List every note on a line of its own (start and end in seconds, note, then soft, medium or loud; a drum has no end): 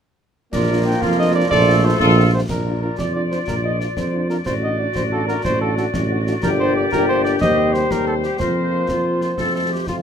0.52 0.94 A#1 medium
0.52 2.29 F3 medium
0.52 1.47 A#3 medium
0.52 0.98 F4 medium
0.52 0.98 A#4 medium
0.52 0.87 D5 loud
0.52 concert bass drum medium
0.52 snare medium
0.52 crash medium
0.69 0.75 A#3 medium
0.69 0.75 D4 medium
0.69 0.75 F4 medium
0.85 0.92 A#3 medium
0.85 0.91 D4 medium
0.85 0.92 F4 medium
0.85 1.04 G5 medium
1.01 1.43 F2 medium
1.01 1.47 F4 medium
1.01 1.47 A#4 medium
1.01 1.18 F5 medium
1.01 concert bass drum medium
1.01 snare medium
1.18 1.24 A#3 medium
1.18 1.24 D4 medium
1.18 1.24 F4 medium
1.18 1.34 D#5 loud
1.35 1.41 A#3 medium
1.35 1.41 D4 medium
1.35 1.40 F4 medium
1.35 1.50 D5 loud
1.50 1.92 A#1 loud
1.50 2.33 A3 medium
1.50 1.96 F4 medium
1.50 1.96 A4 medium
1.50 1.86 D5 loud
1.50 concert bass drum medium
1.50 snare medium
1.68 1.73 A3 medium
1.68 1.73 C4 medium
1.68 1.73 F4 medium
1.84 1.90 A3 medium
1.84 1.90 C4 medium
1.84 1.90 F4 medium
1.84 2.00 C5 loud
1.99 2.41 A#1 loud
1.99 2.30 F4 loud
1.99 2.31 F4 loud
1.99 2.30 A4 medium
1.99 concert bass drum medium
1.99 snare medium
2.16 2.22 A3 medium
2.16 2.22 C4 medium
2.16 2.22 F4 medium
2.33 2.39 A3 medium
2.33 2.39 C4 medium
2.33 2.39 F4 medium
2.33 2.41 C5 medium
2.48 2.90 A#1 medium
2.48 4.42 F4 soft
2.48 2.80 A#4 medium
2.48 4.42 D5 medium
2.48 concert bass drum medium
2.48 snare medium
2.48 crash soft
2.66 2.72 F3 soft
2.66 2.72 D4 soft
2.66 2.72 F4 soft
2.82 2.88 F3 soft
2.82 2.88 D4 soft
2.82 2.88 F4 soft
2.82 2.97 A#4 medium
2.98 3.39 F2 medium
2.98 3.14 D5 medium
2.98 concert bass drum medium
2.98 snare medium
3.15 3.21 F3 soft
3.15 3.21 D4 soft
3.15 3.21 F4 soft
3.15 3.22 D5 medium
3.31 3.38 F3 soft
3.31 3.37 D4 soft
3.31 3.38 F4 soft
3.31 3.39 C5 medium
3.31 snare soft
3.48 3.89 A#1 medium
3.48 3.55 A#4 medium
3.48 concert bass drum medium
3.48 snare medium
3.64 3.70 F3 soft
3.64 3.70 D4 soft
3.64 3.70 F4 soft
3.64 3.81 D#5 medium
3.80 3.87 F3 soft
3.80 3.87 D4 soft
3.80 3.87 F4 soft
3.80 3.99 D5 medium
3.80 snare soft
3.97 4.38 F2 medium
3.97 4.29 C5 medium
3.97 concert bass drum medium
3.97 snare medium
4.13 4.20 F3 soft
4.13 4.20 D4 soft
4.13 4.19 F4 soft
4.29 4.35 F3 soft
4.29 4.35 D4 soft
4.29 4.36 F4 soft
4.29 4.37 A#4 medium
4.29 snare soft
4.46 4.87 A1 medium
4.46 6.39 F#4 medium
4.46 4.53 C5 medium
4.46 6.39 D5 medium
4.46 concert bass drum medium
4.46 snare medium
4.62 4.68 A3 soft
4.62 4.68 D4 soft
4.62 4.68 F#4 soft
4.62 4.81 D#5 medium
4.79 4.85 A3 soft
4.79 4.85 D4 soft
4.79 4.85 F#4 soft
4.79 4.95 D5 medium
4.95 5.36 A1 medium
4.95 5.03 C5 medium
4.95 concert bass drum medium
4.95 snare medium
5.12 5.18 A3 medium
5.12 5.18 D4 medium
5.12 5.17 F#4 medium
5.12 5.27 A4 medium
5.28 5.34 A3 medium
5.28 5.34 D4 medium
5.28 5.34 F#4 medium
5.28 5.43 A#4 medium
5.28 snare soft
5.44 5.85 A1 medium
5.44 5.60 C5 medium
5.44 concert bass drum medium
5.44 snare medium
5.61 5.67 A3 medium
5.61 5.67 D4 medium
5.61 5.67 F#4 medium
5.61 5.76 A4 medium
5.77 5.83 A3 medium
5.77 5.83 D4 medium
5.77 5.83 F#4 medium
5.77 5.85 A4 medium
5.77 snare soft
5.93 6.34 A1 medium
5.93 concert bass drum medium
5.93 snare medium
6.10 6.16 A3 medium
6.10 6.16 D4 medium
6.10 6.16 F#4 medium
6.27 6.33 A3 medium
6.27 6.33 D4 medium
6.27 6.33 F#4 medium
6.27 snare soft
6.42 6.86 G1 medium
6.42 6.89 A#3 medium
6.42 6.89 D4 medium
6.42 8.23 G4 medium
6.42 6.89 G4 medium
6.42 6.50 A#4 medium
6.42 7.37 D5 medium
6.42 concert bass drum medium
6.42 snare medium
6.42 crash soft
6.59 6.75 C5 loud
6.76 6.83 D5 medium
6.92 7.35 G1 medium
6.92 7.38 A#3 medium
6.92 7.38 D4 medium
6.92 7.38 G4 medium
6.92 7.07 A#4 loud
6.92 concert bass drum medium
6.92 snare medium
7.09 7.24 C5 loud
7.24 7.32 D5 medium
7.24 snare soft
7.41 7.84 D#2 medium
7.41 8.40 G3 medium
7.41 8.39 C4 medium
7.41 8.36 G4 medium
7.41 8.86 C5 medium
7.41 7.75 D#5 loud
7.41 concert bass drum medium
7.41 snare medium
7.73 7.93 C5 medium
7.73 snare soft
7.90 8.27 D#2 medium
7.90 8.07 A#4 medium
7.90 concert bass drum medium
7.90 snare medium
8.07 8.14 A4 medium
8.23 8.39 G4 medium
8.23 snare soft
8.39 8.83 F2 medium
8.39 9.34 A#3 medium
8.39 9.34 C4 medium
8.39 9.34 F4 medium
8.39 8.82 A#4 soft
8.39 9.83 C5 medium
8.39 concert bass drum medium
8.39 snare medium
8.89 9.32 F2 medium
8.89 9.20 F4 medium
8.89 concert bass drum medium
8.89 snare medium
9.21 9.29 F4 medium
9.21 snare soft
9.38 9.81 F2 medium
9.38 9.86 A3 soft
9.38 9.84 C4 soft
9.38 9.84 F4 soft
9.38 9.52 A4 medium
9.38 concert bass drum medium
9.38 snare medium
9.53 9.69 A4 medium
9.71 9.87 G4 medium
9.87 10.02 F2 medium
9.87 10.02 A3 soft
9.87 10.02 C4 soft
9.87 9.94 F4 medium
9.87 10.02 F4 medium
9.87 10.02 F4 soft
9.87 concert bass drum medium
9.87 snare medium